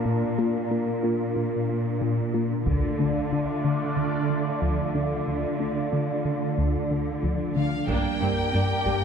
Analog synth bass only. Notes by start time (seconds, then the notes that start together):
0.06 A#2
0.38 A#3
0.71 A#3
1.04 A#3
1.36 A#2
1.69 A#3
2.02 A#2
2.34 A#3
2.67 D2
3.00 D3
3.33 D3
3.65 D3
3.97 D2
4.30 D3
4.62 D2
4.95 D3
5.27 D2
5.60 D3
5.93 D3
6.25 D3
6.58 D2
6.91 D3
7.24 D2
7.56 D3
7.89 G2
8.22 G2
8.54 G2
8.87 G2